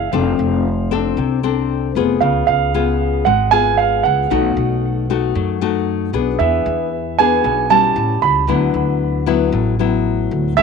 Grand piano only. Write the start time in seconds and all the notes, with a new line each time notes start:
Already playing: F5
2.21 F5
2.47 F5
3.25 F#5
3.51 G#5
3.77 F5
4.03 F#5
6.39 E5
7.19 G#5
7.70 A5
8.22 B5
10.57 E5